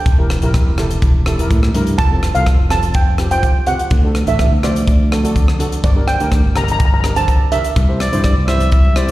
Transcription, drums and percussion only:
0.06 kick, closed hi-hat
0.30 cross-stick, closed hi-hat, high conga
0.42 closed hi-hat, low conga
0.54 kick, cross-stick, closed hi-hat
0.78 cross-stick, closed hi-hat, high conga, low conga
0.91 closed hi-hat
1.02 kick, closed hi-hat
1.14 high conga
1.26 cross-stick, closed hi-hat
1.38 closed hi-hat, high conga
1.50 kick, closed hi-hat, high conga
1.63 cross-stick, high conga
1.74 closed hi-hat, low conga
1.87 closed hi-hat, low conga
1.98 kick, closed hi-hat
2.22 cross-stick, closed hi-hat, high conga
2.35 closed hi-hat
2.46 kick, cross-stick, closed hi-hat
2.70 cross-stick, closed hi-hat, high conga, low conga
2.83 closed hi-hat
2.94 kick, closed hi-hat
3.08 high conga
3.18 cross-stick, closed hi-hat
3.31 closed hi-hat, high conga
3.43 kick, closed hi-hat
3.56 high conga
3.66 closed hi-hat, low conga
3.79 closed hi-hat
3.90 kick, closed hi-hat
4.15 cross-stick, closed hi-hat, high conga
4.27 closed hi-hat
4.39 kick, cross-stick, closed hi-hat
4.63 cross-stick, closed hi-hat, high conga, low conga
4.76 closed hi-hat
4.88 kick, closed hi-hat
5.00 high conga
5.12 cross-stick, closed hi-hat
5.24 closed hi-hat, high conga
5.36 kick, closed hi-hat
5.48 cross-stick, high conga
5.59 closed hi-hat, low conga
5.72 closed hi-hat
5.84 kick, closed hi-hat
6.08 cross-stick, closed hi-hat, high conga
6.20 closed hi-hat
6.32 kick, cross-stick, closed hi-hat
6.56 cross-stick, closed hi-hat, high conga, low conga
6.68 closed hi-hat
6.80 kick, closed hi-hat
6.92 high conga
7.04 cross-stick, closed hi-hat
7.16 closed hi-hat, high conga
7.28 kick, closed hi-hat
7.41 high conga
7.52 closed hi-hat, low conga
7.64 closed hi-hat
7.76 kick, closed hi-hat
8.00 cross-stick, closed hi-hat, high conga
8.13 closed hi-hat, low conga
8.24 kick, cross-stick, closed hi-hat
8.48 cross-stick, closed hi-hat, high conga, low conga
8.60 closed hi-hat
8.72 kick, closed hi-hat
8.85 high conga
8.96 cross-stick, closed hi-hat

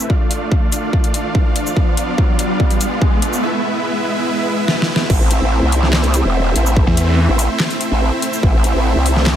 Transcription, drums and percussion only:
0.10 kick
0.31 closed hi-hat
0.52 kick
0.72 closed hi-hat, shaker
0.93 kick
1.04 closed hi-hat
1.14 closed hi-hat
1.35 kick
1.56 closed hi-hat
1.66 shaker
1.77 kick
1.97 closed hi-hat
2.18 kick
2.39 closed hi-hat
2.60 kick
2.71 closed hi-hat
2.81 closed hi-hat, shaker
3.02 kick
3.22 closed hi-hat
3.33 shaker
4.68 snare
4.82 snare
4.96 snare
5.10 kick, crash
5.31 closed hi-hat
5.72 open hi-hat
5.83 snare
5.93 snare, clap
6.04 closed hi-hat
6.14 closed hi-hat, shaker
6.56 closed hi-hat
6.66 shaker
6.76 kick
6.97 closed hi-hat
7.39 open hi-hat, shaker
7.60 snare, clap
7.71 closed hi-hat
7.81 closed hi-hat
8.22 closed hi-hat
8.33 shaker
8.43 kick
8.64 closed hi-hat
9.06 open hi-hat
9.16 snare
9.27 snare, clap

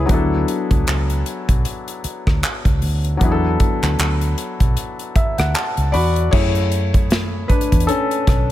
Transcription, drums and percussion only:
0.09 kick, closed hi-hat
0.48 closed hi-hat
0.71 kick, closed hi-hat
0.87 clap, closed hi-hat
1.10 closed hi-hat
1.26 closed hi-hat
1.49 kick, closed hi-hat
1.65 closed hi-hat
1.88 closed hi-hat
2.04 closed hi-hat
2.27 kick, cross-stick
2.43 clap, closed hi-hat
2.65 kick, closed hi-hat
2.82 open hi-hat
3.05 closed hi-hat
3.21 kick, closed hi-hat
3.60 kick, closed hi-hat
3.83 clap, closed hi-hat
3.99 clap, closed hi-hat
4.21 closed hi-hat
4.38 closed hi-hat
4.60 kick, closed hi-hat
4.77 closed hi-hat
4.99 closed hi-hat
5.16 kick, closed hi-hat
5.38 cross-stick, closed hi-hat
5.55 clap, closed hi-hat
5.77 closed hi-hat
5.94 open hi-hat
6.16 closed hi-hat
6.33 kick, crash
6.55 closed hi-hat
6.72 closed hi-hat
6.94 kick, closed hi-hat
7.10 snare, closed hi-hat
7.50 kick, closed hi-hat
7.61 closed hi-hat
7.72 kick, closed hi-hat
7.80 closed hi-hat
7.89 closed hi-hat
8.11 closed hi-hat
8.27 kick, cross-stick, closed hi-hat

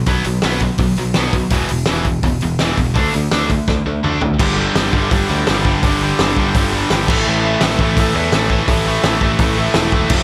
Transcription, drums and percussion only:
0.06 kick, open hi-hat
0.24 open hi-hat
0.42 snare, open hi-hat
0.60 kick, open hi-hat
0.78 kick, open hi-hat
0.96 open hi-hat
1.14 snare, open hi-hat
1.33 kick, open hi-hat
1.50 kick, open hi-hat
1.69 open hi-hat
1.85 snare, open hi-hat
2.05 kick, open hi-hat
2.23 kick, open hi-hat
2.41 open hi-hat
2.59 snare, open hi-hat
2.77 kick, open hi-hat
2.95 kick, open hi-hat
3.14 open hi-hat
3.31 snare, open hi-hat
3.50 kick, open hi-hat
3.68 kick, snare
4.04 mid tom
4.21 floor tom
4.39 kick, crash
4.75 snare, open hi-hat
4.93 kick
5.11 kick, open hi-hat
5.47 snare, open hi-hat
5.65 kick
5.83 kick, open hi-hat
6.19 snare, open hi-hat
6.36 kick
6.55 kick, open hi-hat
6.90 snare, open hi-hat
7.08 kick, crash
7.61 snare, open hi-hat
7.79 kick
7.97 kick, open hi-hat
8.32 snare, open hi-hat
8.50 kick
8.68 kick, open hi-hat
9.03 snare, open hi-hat
9.21 kick
9.39 kick, open hi-hat
9.74 snare, open hi-hat
9.92 kick
10.10 kick, crash

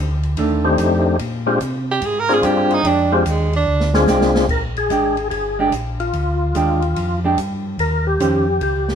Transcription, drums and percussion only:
0.23 ride
0.37 kick, ride
0.78 kick, hi-hat pedal, ride
1.19 kick, ride
1.61 kick, hi-hat pedal, ride
2.02 kick, ride
2.29 snare
2.43 kick, hi-hat pedal, ride
2.70 ride
2.84 kick, ride
3.26 kick, hi-hat pedal, ride
3.53 ride
3.80 snare
3.94 snare
4.07 snare, hi-hat pedal
4.21 snare
4.35 snare
4.49 kick, crash
4.76 ride
4.90 kick, hi-hat pedal, ride
5.17 ride
5.31 kick, ride
5.72 kick, hi-hat pedal, ride
6.00 ride
6.13 kick, ride
6.55 kick, hi-hat pedal, ride
6.82 ride
6.96 kick, ride
7.38 kick, hi-hat pedal, ride
7.79 kick, ride
8.20 kick, hi-hat pedal, ride
8.61 kick, ride
8.88 snare

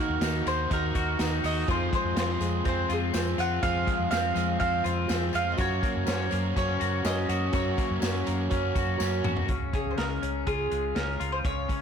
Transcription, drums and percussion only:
0.21 snare, closed hi-hat, tambourine
0.47 closed hi-hat, tambourine
0.71 kick, closed hi-hat, tambourine
0.95 kick, closed hi-hat, tambourine
1.19 snare, closed hi-hat, tambourine
1.44 open hi-hat, tambourine
1.68 kick, closed hi-hat, tambourine
1.93 kick, closed hi-hat, tambourine
2.17 snare, closed hi-hat, tambourine
2.41 closed hi-hat, tambourine
2.65 kick, closed hi-hat
2.90 closed hi-hat, tambourine
3.14 snare, closed hi-hat, tambourine
3.38 closed hi-hat, tambourine
3.63 kick, closed hi-hat, tambourine
3.87 kick, closed hi-hat
4.12 snare, closed hi-hat, tambourine
4.36 closed hi-hat, tambourine
4.61 kick, closed hi-hat
4.84 closed hi-hat, tambourine
5.09 snare, closed hi-hat, tambourine
5.33 closed hi-hat, tambourine
5.58 kick, closed hi-hat, tambourine
5.83 kick, closed hi-hat
6.07 snare, closed hi-hat, tambourine
6.31 closed hi-hat, tambourine
6.56 kick, closed hi-hat, tambourine
6.81 closed hi-hat, tambourine
7.05 snare, closed hi-hat, tambourine
7.29 closed hi-hat, tambourine
7.53 kick, closed hi-hat, tambourine
7.78 kick, closed hi-hat, tambourine
8.02 snare, closed hi-hat, tambourine
8.27 closed hi-hat, tambourine
8.51 kick, closed hi-hat, tambourine
8.76 kick, closed hi-hat, tambourine
9.00 snare, tambourine
9.24 mid tom, tambourine
9.37 floor tom
9.48 kick, closed hi-hat
9.73 kick, closed hi-hat
9.98 snare, closed hi-hat
10.23 closed hi-hat
10.47 kick, closed hi-hat
10.71 closed hi-hat
10.96 snare, closed hi-hat
11.21 closed hi-hat
11.45 kick, closed hi-hat
11.69 kick, closed hi-hat

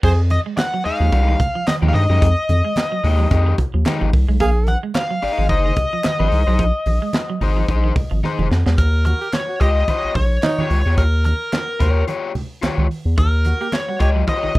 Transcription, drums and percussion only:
0.03 kick, crash
0.30 closed hi-hat, muted conga
0.57 snare, clap, closed hi-hat, high conga
0.86 open hi-hat
1.12 kick, closed hi-hat, muted conga
1.40 kick, closed hi-hat, low conga
1.67 snare, clap, closed hi-hat, high conga
1.83 high conga
1.95 open hi-hat
2.22 kick, closed hi-hat
2.49 closed hi-hat, muted conga
2.76 snare, clap, closed hi-hat, high conga
3.04 open hi-hat, low conga
3.31 kick, closed hi-hat, muted conga
3.58 kick, closed hi-hat, low conga
3.86 snare, clap, closed hi-hat, high conga
4.01 high conga
4.13 kick, open hi-hat
4.40 kick, closed hi-hat, muted conga
4.67 closed hi-hat, muted conga
4.94 snare, clap, closed hi-hat, high conga
5.22 open hi-hat
5.49 kick, closed hi-hat, muted conga
5.76 kick, closed hi-hat, low conga
6.04 snare, clap, closed hi-hat, high conga
6.20 high conga
6.32 open hi-hat
6.59 kick, closed hi-hat, muted conga
6.86 open hi-hat, muted conga
7.13 snare, clap, closed hi-hat, high conga
7.41 open hi-hat, low conga
7.68 kick, closed hi-hat, muted conga
7.96 kick, open hi-hat, low conga
8.24 snare, high conga
8.39 high conga
8.51 snare
8.66 snare
8.78 kick, closed hi-hat, muted conga
9.05 closed hi-hat, muted conga
9.32 snare, clap, closed hi-hat, high conga
9.61 kick, closed hi-hat
9.88 kick, closed hi-hat, muted conga
10.15 kick, open hi-hat, low conga
10.43 snare, clap, closed hi-hat, high conga
10.59 high conga
10.70 open hi-hat
10.98 kick, closed hi-hat
11.24 closed hi-hat, muted conga
11.52 snare, clap, closed hi-hat, high conga
11.80 kick, closed hi-hat, low conga
12.08 closed hi-hat, muted conga
12.35 open hi-hat, low conga
12.63 snare, clap, closed hi-hat, high conga
12.78 high conga
12.91 open hi-hat
13.18 kick, closed hi-hat
13.45 closed hi-hat, muted conga
13.72 snare, clap, closed hi-hat, high conga
14.00 kick, closed hi-hat
14.28 kick, closed hi-hat, muted conga
14.55 kick, open hi-hat, low conga

